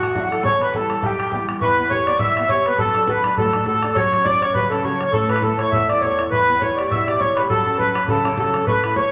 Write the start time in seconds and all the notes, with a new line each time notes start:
Already playing: D1 A1 F#4
0.03 F#5 A5, bodhran
0.09 bodhran
0.15 E3 F#3 D4, bodhran
0.20 E5 F#5
0.32 A4, bodhran
0.43 E1 E2 C#5 C#6, bodhran
0.61 B4 B5, bodhran
0.73 E3 G3 B3 A4 A5 B5, bodhran
0.90 bodhran
1.02 B1 G4 G5 A5, bodhran
1.20 bodhran
1.25 bodhran
1.32 E3 G3 B3, bodhran
1.49 bodhran
1.61 E2 E3 B4 C#6, bodhran
1.65 B5
1.70 bodhran
1.79 B3
1.89 G4 C#5 C#6, bodhran
1.99 bodhran
2.07 B3 D5, bodhran
2.19 B2 E3 E5 E6, bodhran
2.37 B2 B3, bodhran
2.43 bodhran
2.49 G4 C#5 C#6, bodhran
2.66 B3 B4 B5, bodhran
2.78 F#2 F#3 A4 A5, bodhran
2.87 bodhran
2.95 D4, bodhran
3.07 F#4 B4 B5, bodhran
3.16 bodhran
3.24 D4, bodhran
3.37 A2 F#3 A4 A5, bodhran
3.53 A2 D4, bodhran
3.60 bodhran
3.66 F#4 A4 A5, bodhran
3.83 D4, bodhran
3.95 F#2 F#3 C#5 E6, bodhran
3.99 C#6
4.05 bodhran
4.13 C#4, bodhran
4.24 F#3 D5 D6, bodhran
4.34 bodhran
4.41 C#4 C#5 C#6, bodhran
4.54 C#3 F#3 B4 B5, bodhran
4.70 C#3 C#4 A4 A5, bodhran
4.78 bodhran
4.83 F#3 C#5 C#6, bodhran
5.01 C#4, bodhran
5.13 A2 A3 A4 A5, bodhran
5.22 bodhran
5.29 E4 B4 B5, bodhran
5.36 bodhran
5.42 A3 A4 A5, bodhran
5.58 E4 C#5 C#6, bodhran
5.71 E2 A3 E5 E6, bodhran
5.89 E2 E4 D5 D6, bodhran
5.96 bodhran
6.01 A3 C#5 E6, bodhran
6.07 C#6
6.19 E4, bodhran
6.31 E2 E3 B4 C#6, bodhran
6.37 B5, bodhran
6.49 B3
6.60 E4 C#5 C#6, bodhran
6.71 bodhran
6.76 G4 D5, bodhran
6.89 B2 E4 E5 E6, bodhran
7.06 B2 G4 D5 D6, bodhran
7.14 bodhran
7.20 E4 C#5 C#6, bodhran
7.36 G4 B4 B5, bodhran
7.49 F#2 F#3 A4 B5, bodhran
7.54 A5
7.58 bodhran
7.67 C#4
7.78 F#3 B4 B5, bodhran
7.88 bodhran
7.95 C#4, bodhran
8.08 C#3 F#3 A4 A5, bodhran
8.25 C#3 C#4, bodhran
8.32 bodhran
8.37 F#3 A4 A5, bodhran
8.54 C#4, bodhran
8.66 A2 A3 B4 C#6, bodhran
8.73 B5, bodhran
8.84 E4, bodhran
8.96 A3 C#5 C#6, bodhran
9.05 bodhran